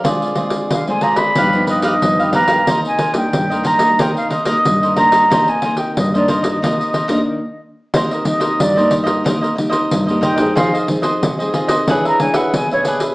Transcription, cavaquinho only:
X:1
M:4/4
L:1/16
Q:1/4=91
K:Cm
V:1 name="Cavaquinho"
[FAcd]2 [FAcd]3 [Acd] [FAcd] [Acd] [^DG=Bf]2 [DGBf] [DGBf] z [GBf] [DGBf] [GBf] | [EBce]2 [EBce]3 [Bce] [EBce] [Bce] [EBce]2 [EBce] [EBce] z [Bce] [EBce] [Bce] | [EBce]2 [EBce]3 [Bce] [EBce] [Bce] [EBce]2 [EBce] [EBce] z4 | [EBce] [Bce] z [Bce]2 [Bce] [EBce] [Bce] [EBce] [Bce] z [Bce]2 [Bce] [EBce] [Bce] |
[FAce] [Ace] z [Ace]2 [Ace] [FAce] [Ace] [D^G=B=e] [GBe] z [GBe]2 [GBe] [DGBe] [GBe] |]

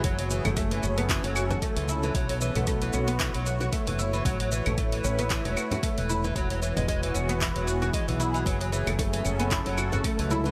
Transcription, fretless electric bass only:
X:1
M:4/4
L:1/16
Q:"Swing 16ths" 1/4=114
K:F#m
V:1 name="Fretless electric bass" clef=bass
F,,,3 F,,,3 F,,,3 F,,,3 z C,,3 | B,,,3 B,,,3 B,,,3 B,,,3 z F,,,3 | A,,,3 A,,,3 A,,,3 E,,, z3 E,,,3 | E,,,3 E,,,3 E,,,3 E,,,3 z B,,,3 |
F,,,3 F,,,3 F,,,3 F,,,3 z C,,3 |]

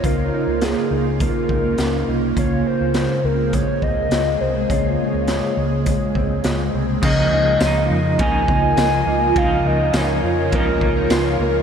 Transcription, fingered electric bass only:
X:1
M:4/4
L:1/16
Q:1/4=103
K:Db
V:1 name="Fingered electric bass" clef=bass
D,,2 z D,,2 z D,,3 z D,,2 D,,2 C,,2 | D,,2 z D,,2 z D,,3 z D,,2 D,,2 C,,2 | D,,2 z D,,2 z D,,3 z D,,2 D,,2 C,,2 | D,,2 D,,2 D,,2 F,,2 D,,2 D,,2 D,,2 D,,2 |
D,,2 D,,2 D,,2 F,,2 D,,2 D,,2 D,,2 D,,2 |]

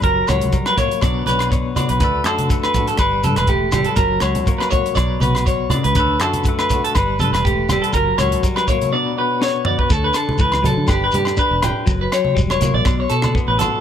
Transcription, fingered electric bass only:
X:1
M:4/4
L:1/16
Q:"Swing 16ths" 1/4=122
K:D
V:1 name="Fingered electric bass" clef=bass
F,,,2 C,,2 z4 B,,,2 B,,,4- B,,, B,,, | D,,2 F,,6 G,,,2 G,, E,,,4- E,,, | F,,,2 C,,2 z4 B,,,2 B,,,4- B,,, C,, | D,,2 F,,6 G,,,2 G,, E,,,4- E,,, |
F,,,2 C,,2 z12 | D,,2 z2 C,,3 D, G,,,2 G,,2 z E,,,2 z | F,,,2 z2 E,,,3 ^A,,, B,,,2 B,,2 z =A,,,2 z |]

